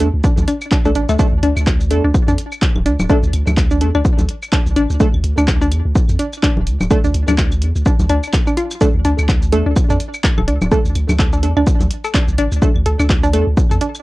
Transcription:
0.00 E2 A3 D4 A4, closed hi-hat
0.14 D2
0.24 D4, kick, shaker
0.38 D2, closed hi-hat, low conga, shaker
0.48 D4, closed hi-hat, claves
0.61 claves, shaker
0.71 D4, kick, clap, shaker
0.85 C2 A3 D4 A4, shaker
0.95 A1 D4, closed hi-hat
1.09 D2 A3, claves, shaker
1.19 A3 D4 A4, kick, shaker
1.33 D2
1.43 D2 D4, closed hi-hat
1.57 D2, claves, shaker
1.67 kick, clap, shaker
1.81 shaker
1.90 E2 A3 D4 A4, closed hi-hat
2.04 D2 D4
2.14 kick, claves, shaker
2.28 F2 D4, closed hi-hat, shaker
2.38 closed hi-hat
2.52 claves, shaker
2.62 kick, clap, shaker
2.76 D1, low conga, claves
2.86 D2 D4, closed hi-hat
2.99 D1, low conga, claves, shaker
3.10 A3 D4 A4, kick, shaker
3.23 D2, shaker
3.33 D2, closed hi-hat, claves
3.47 D2, low conga, claves, shaker
3.57 kick, clap, shaker
3.71 D4, shaker
3.81 E2 A3 D4 A4, closed hi-hat
3.95 D2 D4, claves
4.05 kick, shaker
4.19 D2, closed hi-hat, low conga, shaker
4.29 closed hi-hat
4.42 claves, shaker
4.52 D4, kick, clap, claves, shaker
4.66 C2, shaker
4.76 A1 D4, closed hi-hat
4.90 D2, shaker
5.00 A3 D4 A4, kick, shaker
5.14 D2, claves
5.24 D2, closed hi-hat
5.38 D2 D4, claves, shaker
5.48 kick, clap, shaker
5.61 D4, shaker
5.71 E2, closed hi-hat, claves
5.85 D2
5.95 kick, shaker
6.09 F2, closed hi-hat, shaker
6.19 D4, closed hi-hat
6.33 claves, shaker
6.43 D4, kick, clap, shaker
6.57 D1, low conga
6.67 D2, closed hi-hat
6.80 D1, low conga, claves, shaker
6.91 A3 D4 A4, kick, claves, shaker
7.04 D2 D4, shaker
7.14 D2, closed hi-hat
7.28 D2 D4, closed hi-hat, low conga, claves, shaker
7.38 kick, clap, shaker
7.52 claves, shaker
7.62 E2, closed hi-hat
7.76 D2, shaker
7.86 D4, kick, shaker
7.99 D2, closed hi-hat, low conga, shaker
8.09 D2 D4, closed hi-hat, claves
8.23 claves, shaker
8.33 kick, clap, shaker
8.47 D4, claves, shaker
8.57 F4, closed hi-hat
8.71 claves, shaker
8.81 A3 D4 A4, kick, shaker
8.95 D2
9.05 D2 D4, closed hi-hat
9.18 D2, claves, shaker
9.29 kick, clap, shaker
9.42 shaker
9.52 E2 A3 D4 A4, closed hi-hat
9.66 D2 D4
9.76 kick, claves, shaker
9.90 F2 D4, closed hi-hat, shaker
10.00 closed hi-hat
10.14 claves, shaker
10.24 kick, clap, shaker
10.38 D1 A4, low conga, claves
10.48 D2 D4, closed hi-hat
10.61 D1, low conga, claves, shaker
10.72 A3 D4 A4, kick, shaker
10.85 D2, shaker
10.95 D2, closed hi-hat, claves
11.09 D2, low conga, claves, shaker
11.19 A4, kick, clap, shaker
11.33 D4, shaker
11.43 E2 A3 D4 A4, closed hi-hat
11.57 D2 D4, claves
11.67 kick, shaker
11.80 D2, closed hi-hat, low conga, shaker
11.91 closed hi-hat
12.04 A4, claves, shaker
12.14 D4, kick, clap, claves, shaker
12.28 C2, shaker
12.38 A1 D4, closed hi-hat
12.52 D2, shaker
12.62 A3 D4 A4, kick, shaker
12.76 D2, claves
12.86 D2 A4, closed hi-hat
12.99 D2 D4, claves, shaker
13.10 kick, clap, shaker
13.23 D4, shaker
13.33 E2 A3 D4 A4, closed hi-hat, claves
13.47 D2
13.57 kick, shaker
13.71 F2 A4, closed hi-hat, shaker
13.81 D4, closed hi-hat
13.95 claves, shaker

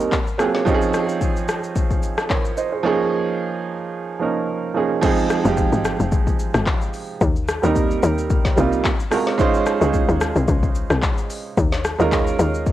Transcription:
Already playing: D#2 G3 A#3 C4 D#4 A#4
0.00 shaker
0.12 kick, clap, shaker
0.27 shaker
0.38 F#3 A#3 C4 F4 G#4, cross-stick, shaker
0.54 snare
0.65 F3 C4 C#4 D#4 G4, kick, shaker
0.74 G#4
0.81 shaker
0.94 cross-stick, shaker
1.09 shaker
1.21 kick, shaker
1.36 shaker
1.48 cross-stick, shaker
1.63 shaker
1.76 kick, shaker
1.90 kick, shaker
2.03 shaker
2.18 cross-stick, shaker
2.30 A#4 C#5, kick, clap, shaker
2.45 shaker
2.57 C5 D#5, shaker
2.72 G#4 C5
2.83 F3 A#3 C#4 D#4 G#4
4.19 F3 A#3 C#4 D#4 A#4
4.74 F3 A#3 C#4 D#4 G#4
5.01 F3 G#3 C4 D#4 G#4, kick, crash, shaker
5.18 shaker
5.30 cross-stick, shaker
5.44 F1 F3 G#3 C4 D#4 G4, shaker
5.57 kick, shaker
5.72 G#1, shaker
5.85 cross-stick, shaker
6.00 F1, shaker
6.12 A#1, kick, shaker
6.27 kick, shaker
6.39 shaker
6.54 G#1, cross-stick, shaker
6.66 kick, clap, shaker
6.81 shaker
6.94 open hi-hat, shaker
7.21 D#2, kick, shaker
7.36 shaker
7.48 cross-stick, shaker
7.62 D#2 G3 A#3 C4 D#4 A#4, shaker
7.76 kick, shaker
7.91 shaker
8.03 D#2, shaker
8.18 shaker
8.30 kick, shaker
8.45 kick, snare, shaker
8.56 C2 G3 A#3 C4 D#4 F4, shaker
8.72 shaker
8.85 kick, clap, shaker
9.00 shaker
9.11 G#3 C4 F4 F#4 A#4, cross-stick, open hi-hat, shaker
9.27 snare
9.38 G#3 C#4 D#4 F4 C5, kick, shaker
9.54 shaker
9.66 cross-stick, shaker
9.80 C#2 G#3 C#4 D#4 F4 G#4, shaker
9.94 kick, shaker
10.09 D#2, shaker
10.21 cross-stick, shaker
10.36 C2, shaker
10.48 C#2, kick, shaker
10.63 kick, shaker
10.75 shaker
10.90 C2, cross-stick, shaker
11.03 kick, clap, shaker
11.18 shaker
11.30 open hi-hat, shaker
11.57 D#2, kick, shaker
11.72 snare, shaker
11.84 cross-stick, shaker
11.98 D#2 G#3 C#4 D#4 F4 A#4, shaker
12.12 kick, clap, shaker
12.27 shaker
12.39 D#2, shaker
12.54 shaker
12.66 kick, shaker

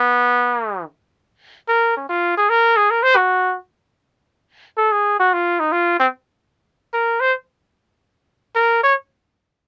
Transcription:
Already playing: B3
1.68 A#4
1.97 C#4
2.09 F4
2.37 G#4
2.50 A#4
2.76 G#4
2.91 A#4
3.03 C5
3.16 F#4
4.77 A4
4.92 G#4
5.20 F#4
5.33 F4
5.60 D#4
5.72 F4
6.00 C4
6.93 A#4
7.20 C5
8.55 A#4
8.83 C#5

